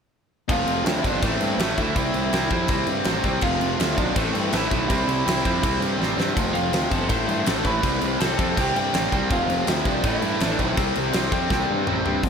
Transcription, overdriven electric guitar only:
0.50 F4 F5
0.86 E4 E5
1.03 D4 D5
1.23 C4 C5
1.59 E4 E5
1.78 E4 E5
3.43 F4 F5
3.79 E4 E5
3.97 D4 D5
4.17 C4 C5
4.52 E4 E5
4.69 E4 E5
6.54 F4 F5
6.91 A4 A5
7.09 C5 C6
7.64 B4 B5
8.20 A4 A5
8.56 G4 G5
8.76 G4 G5
9.31 F4 F5
9.69 E4 E5
9.87 D4 D5
10.07 E4 E5
10.42 D4 D5
10.59 C4 C5

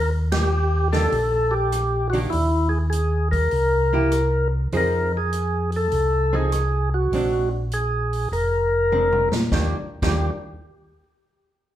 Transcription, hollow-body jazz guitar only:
0.93 D#3 A#3 D4 G4
2.13 D#3 A#3 D4 G4
3.93 A#3 E4 G4
4.73 F3 C4 D#4 G#4
6.33 F3 C4 D#4 G#4
7.13 G#3 C4 D4
8.92 G#3 C4 D4
9.52 D#3 G3 A#3 D4
10.02 D#3 G3 A#3 D4

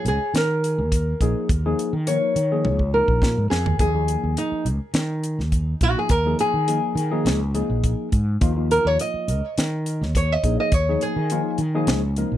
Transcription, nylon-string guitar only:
0.08 G#4
0.37 A#4
2.07 C#5
2.94 A#4
3.50 G#4
3.80 G#4
4.38 D#4
5.83 F#4
5.99 G#4
6.11 A#4
6.41 G#4
8.71 A#4
8.87 C#5
9.01 D#5
10.17 C#5
10.32 D#5
10.60 D#5
10.74 C#5
11.02 G#4

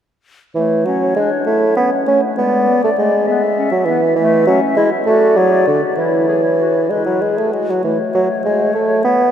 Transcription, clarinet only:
0.56 A3
0.86 C#4
1.17 D4
1.47 E4
1.77 C#4
2.07 A3
2.38 G#3
2.69 B3
2.98 A3
3.29 B3
3.58 C#4
3.88 B3
4.18 A3
4.47 C#4
4.77 E4
5.06 F#4
5.37 G#4
5.67 F#4
5.97 E4
6.28 G#4
6.60 F#4
6.92 E4
7.22 G#4
7.52 F#4
7.84 A3

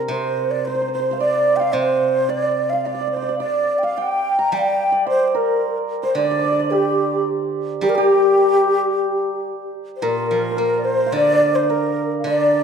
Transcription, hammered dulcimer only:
Already playing: G4 A#4 C5
0.11 C5
0.67 C5
0.75 C5
0.81 C5
0.88 C5
0.95 C5
0.99 C5
1.11 C5 F5
1.20 D5
1.57 G5
1.61 F5
1.73 C5
2.29 D5
2.73 F5
2.86 D5
2.95 D5
3.01 D5
3.07 D5
3.16 D5
3.22 D5
3.29 D5
3.40 D5
3.83 F5
3.98 G5
4.39 A#5
4.53 G5
4.92 D5
5.07 C5
5.35 A#4
6.03 C5
6.18 D5
6.24 D5
6.31 D5
6.39 D5
6.45 D5
6.52 D5
6.60 D5
6.72 G4
7.82 G4 A#4
7.98 G4
10.02 A#4
10.51 C5
10.57 A#4
11.06 F5
11.16 D5
11.70 A#4
12.27 D5

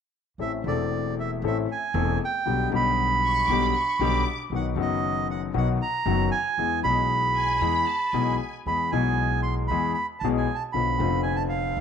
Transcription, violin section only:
3.24 C#6
3.48 D6
3.62 B5
3.76 C#6
4.01 D6
7.36 G#5
7.61 B5
7.88 A5
8.14 G#5

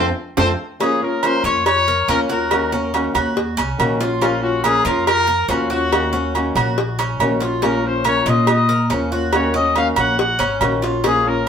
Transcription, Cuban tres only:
0.37 C4 F4 A4
0.80 C#4
1.24 A#4
1.44 F4
1.88 A#4
2.08 C#4
2.29 F#4
2.72 C#4
3.15 F#4
3.57 C#4
4.01 F4
4.21 C#4
4.64 A#4
4.85 F4
5.27 A#4
5.49 C#4
5.70 F#4
6.13 C#4
6.56 F#4
6.99 C#4
7.40 F4
7.62 C#4
8.04 A#4
8.26 F4
8.69 A#4
8.90 C#4
9.12 F#4
9.54 C#4
9.96 F#4
10.39 C#4
10.82 F4
11.04 C#4

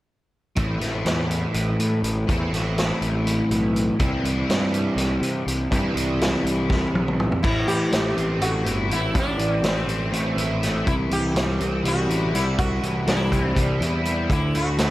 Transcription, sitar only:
7.43 E4
7.68 G4
8.42 F#4
8.93 E4
9.19 D4
9.68 C4
10.87 E4
11.13 G4
11.88 F#4
12.35 E4
12.59 F#4
13.08 E4
14.32 E4
14.57 F#4

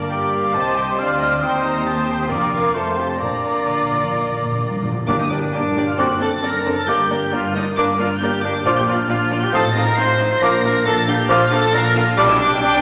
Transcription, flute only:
Already playing: D6
0.11 D6
0.99 F6
1.42 D#6
2.31 D6
2.75 C6
3.20 D6
5.08 D6
5.99 D6
6.89 D6
7.77 D6
8.66 D6
9.54 D#6
10.43 D6
11.29 D6
12.18 D6

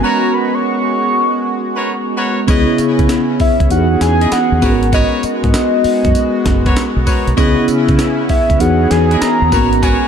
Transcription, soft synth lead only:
0.03 A#5
0.34 B5
0.54 C#6
3.41 E5
3.71 F#5
4.02 G#5
4.33 F#5
4.94 D#5
5.24 D#5
8.30 E5
8.60 F#5
8.90 G#5
9.21 A#5
9.82 G#5

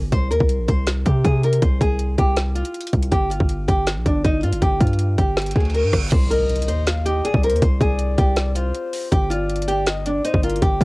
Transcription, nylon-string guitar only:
0.12 C5
0.30 A#4
0.68 C5
1.05 G4
1.24 G#4
1.44 A#4
1.62 C5
1.81 G#4
2.18 G4
2.55 F4
3.12 G4
3.30 F4
3.68 G4
4.07 D4
4.24 D#4
4.43 F4
4.62 G4
4.80 F4
5.18 G4
5.56 G#4
5.74 A#4
6.12 C5
6.31 A#4
6.68 C5
7.05 G4
7.24 G#4
7.44 A#4
7.62 C5
7.81 G#4
8.18 G4
8.55 F4
9.12 G4
9.30 F4
9.68 G4
10.07 D4
10.24 D#4
10.43 F4
10.62 G4
10.81 F4

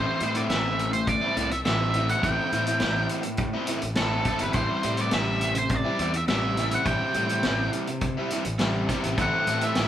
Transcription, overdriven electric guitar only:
Already playing: A2 E3 A3 C4 E4
0.21 E3 A3 C4 E4
0.35 A3 C4 E4
0.49 A2 E3 A3 C4 E4
0.93 muted overdriven electric guitar stroke
1.21 A3 C4 E4
1.36 E3 A3 C4 E4
1.52 muted overdriven electric guitar stroke
1.65 A2 E3 A3 C4 E4
1.95 E3 A3 C4 E4
2.09 A3 C4 E4
2.23 A2 E3 A3 C4 E4
2.53 E3 A3 C4 E4
2.67 A3 C4 E4
2.81 A2 E3 A3 C4 E4
3.25 muted overdriven electric guitar stroke
3.54 A3 C4 E4
3.68 E3 A3 C4 E4
3.83 muted overdriven electric guitar stroke
3.97 A2 E3 A3 C4 E4
4.26 E3 A3 C4 E4
4.40 A3 C4 E4
4.55 C3 E3 G3 C4 E4
4.83 E3 G3 C4 E4
4.98 G3 C4 E4
5.12 C3 E3 G3 C4 E4
5.56 muted overdriven electric guitar stroke
5.85 G3 C4 E4
5.99 E3 G3 C4 E4
6.13 muted overdriven electric guitar stroke
6.28 C3 E3 G3 C4 E4
6.57 E3 G3 C4 E4
6.72 G3 C4 E4
6.86 C3 E3 G3 C4 E4
7.14 E3 G3 C4 E4
7.28 G3 C4 E4
7.43 C3 E3 G3 C4 E4
7.88 muted overdriven electric guitar stroke
8.17 G3 C4 E4
8.31 E3 G3 C4 E4
8.45 muted overdriven electric guitar stroke
8.59 C3 E3 G3 C4 E4
8.89 E3 G3 C4 E4
9.04 G3 C4 E4
9.19 A2 E3 A3 C4 E4
9.47 E3 A3 C4 E4
9.63 A3 C4 E4
9.77 A2 E3 A3 C4 E4

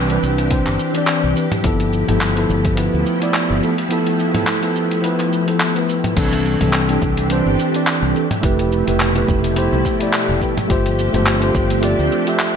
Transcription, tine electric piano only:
0.09 E3 C4 D4
0.13 B4
0.49 E3 C4 D4 C5
0.94 E3 C4 D4 D5
1.34 E3 C4 D4 B4
1.62 F3 B3 E4 A4
2.07 F3 B3 E4 A4
2.35 F3 B3 E4 A4
2.75 F3 B3 E4 B4
3.19 F3 B3 E4 D5
3.60 F3 B3 E4
3.64 A4
3.89 F3 B3 E4 A4
4.32 F3 B3 E4 A4
4.61 F3 B3 E4 A4
5.02 F3 B3 E4
5.06 B4
5.46 F3 B3 E4 A4
5.74 F3 B3 E4 B4
6.15 E3 C4 D4 A4
6.59 E3 C4 D4 A4
6.88 E3 C4 D4 A4
7.28 E3 C4 D4
7.32 C5
7.72 E3 C4 D4 D5
8.13 E3 C4 D4 A4
8.41 A3 E4 G4 B4
8.85 A3 E4 G4 B4
9.14 A3 E4 G4 B4
9.55 A3 E4 G4 C5
9.99 A3 E4 G4 D5
10.40 A3 E4 G4 B4
10.68 A3 F4 G4 C5
11.12 A3 F4 G4 C5
11.40 A3 F4 G4 C5
11.81 A3 F4 G4
11.85 D5
12.25 A3 F4 G4
12.29 E5

